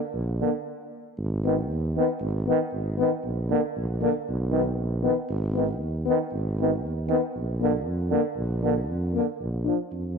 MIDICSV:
0, 0, Header, 1, 4, 480
1, 0, Start_track
1, 0, Tempo, 515021
1, 132, Time_signature, 2, 2, 24, 8
1, 9488, End_track
2, 0, Start_track
2, 0, Title_t, "French horn"
2, 0, Program_c, 0, 60
2, 393, Note_on_c, 0, 58, 59
2, 486, Note_off_c, 0, 58, 0
2, 1348, Note_on_c, 0, 59, 55
2, 1443, Note_off_c, 0, 59, 0
2, 1840, Note_on_c, 0, 59, 68
2, 1933, Note_off_c, 0, 59, 0
2, 2303, Note_on_c, 0, 59, 72
2, 2400, Note_off_c, 0, 59, 0
2, 2779, Note_on_c, 0, 59, 71
2, 2876, Note_off_c, 0, 59, 0
2, 3260, Note_on_c, 0, 58, 69
2, 3357, Note_off_c, 0, 58, 0
2, 3746, Note_on_c, 0, 58, 72
2, 3842, Note_off_c, 0, 58, 0
2, 4218, Note_on_c, 0, 59, 57
2, 4316, Note_off_c, 0, 59, 0
2, 4693, Note_on_c, 0, 59, 68
2, 4791, Note_off_c, 0, 59, 0
2, 5155, Note_on_c, 0, 59, 53
2, 5257, Note_off_c, 0, 59, 0
2, 5643, Note_on_c, 0, 59, 74
2, 5743, Note_off_c, 0, 59, 0
2, 6148, Note_on_c, 0, 59, 64
2, 6243, Note_off_c, 0, 59, 0
2, 6608, Note_on_c, 0, 59, 77
2, 6707, Note_off_c, 0, 59, 0
2, 7089, Note_on_c, 0, 58, 64
2, 7187, Note_off_c, 0, 58, 0
2, 7564, Note_on_c, 0, 58, 69
2, 7663, Note_off_c, 0, 58, 0
2, 8042, Note_on_c, 0, 58, 54
2, 8141, Note_off_c, 0, 58, 0
2, 8520, Note_on_c, 0, 58, 61
2, 8619, Note_off_c, 0, 58, 0
2, 8983, Note_on_c, 0, 62, 43
2, 9085, Note_off_c, 0, 62, 0
2, 9488, End_track
3, 0, Start_track
3, 0, Title_t, "Euphonium"
3, 0, Program_c, 1, 58
3, 381, Note_on_c, 1, 50, 59
3, 476, Note_off_c, 1, 50, 0
3, 1358, Note_on_c, 1, 51, 61
3, 1451, Note_off_c, 1, 51, 0
3, 1828, Note_on_c, 1, 51, 68
3, 1924, Note_off_c, 1, 51, 0
3, 2321, Note_on_c, 1, 51, 71
3, 2414, Note_off_c, 1, 51, 0
3, 2804, Note_on_c, 1, 51, 60
3, 2896, Note_off_c, 1, 51, 0
3, 3261, Note_on_c, 1, 50, 77
3, 3358, Note_off_c, 1, 50, 0
3, 3740, Note_on_c, 1, 50, 69
3, 3837, Note_off_c, 1, 50, 0
3, 4205, Note_on_c, 1, 51, 66
3, 4306, Note_off_c, 1, 51, 0
3, 4689, Note_on_c, 1, 51, 56
3, 4788, Note_off_c, 1, 51, 0
3, 5188, Note_on_c, 1, 51, 58
3, 5283, Note_off_c, 1, 51, 0
3, 5670, Note_on_c, 1, 51, 63
3, 5765, Note_off_c, 1, 51, 0
3, 6159, Note_on_c, 1, 51, 61
3, 6252, Note_off_c, 1, 51, 0
3, 6593, Note_on_c, 1, 51, 66
3, 6695, Note_off_c, 1, 51, 0
3, 7111, Note_on_c, 1, 50, 72
3, 7204, Note_off_c, 1, 50, 0
3, 7553, Note_on_c, 1, 50, 74
3, 7654, Note_off_c, 1, 50, 0
3, 8047, Note_on_c, 1, 50, 66
3, 8145, Note_off_c, 1, 50, 0
3, 8540, Note_on_c, 1, 50, 53
3, 8635, Note_off_c, 1, 50, 0
3, 9014, Note_on_c, 1, 53, 53
3, 9110, Note_off_c, 1, 53, 0
3, 9488, End_track
4, 0, Start_track
4, 0, Title_t, "Tuba"
4, 0, Program_c, 2, 58
4, 126, Note_on_c, 2, 34, 98
4, 394, Note_off_c, 2, 34, 0
4, 1095, Note_on_c, 2, 32, 108
4, 1573, Note_on_c, 2, 39, 100
4, 1587, Note_off_c, 2, 32, 0
4, 1841, Note_off_c, 2, 39, 0
4, 2052, Note_on_c, 2, 32, 112
4, 2320, Note_off_c, 2, 32, 0
4, 2543, Note_on_c, 2, 32, 90
4, 2808, Note_off_c, 2, 32, 0
4, 3023, Note_on_c, 2, 34, 92
4, 3288, Note_off_c, 2, 34, 0
4, 3513, Note_on_c, 2, 34, 97
4, 3775, Note_off_c, 2, 34, 0
4, 3996, Note_on_c, 2, 35, 102
4, 4459, Note_on_c, 2, 34, 96
4, 4473, Note_off_c, 2, 35, 0
4, 4725, Note_off_c, 2, 34, 0
4, 4937, Note_on_c, 2, 32, 110
4, 5409, Note_on_c, 2, 39, 90
4, 5423, Note_off_c, 2, 32, 0
4, 5677, Note_off_c, 2, 39, 0
4, 5895, Note_on_c, 2, 32, 103
4, 6378, Note_on_c, 2, 39, 87
4, 6392, Note_off_c, 2, 32, 0
4, 6643, Note_off_c, 2, 39, 0
4, 6851, Note_on_c, 2, 34, 92
4, 7317, Note_on_c, 2, 41, 89
4, 7331, Note_off_c, 2, 34, 0
4, 7587, Note_off_c, 2, 41, 0
4, 7797, Note_on_c, 2, 34, 103
4, 8288, Note_on_c, 2, 41, 93
4, 8302, Note_off_c, 2, 34, 0
4, 8554, Note_off_c, 2, 41, 0
4, 8764, Note_on_c, 2, 34, 89
4, 9030, Note_off_c, 2, 34, 0
4, 9236, Note_on_c, 2, 41, 72
4, 9488, Note_off_c, 2, 41, 0
4, 9488, End_track
0, 0, End_of_file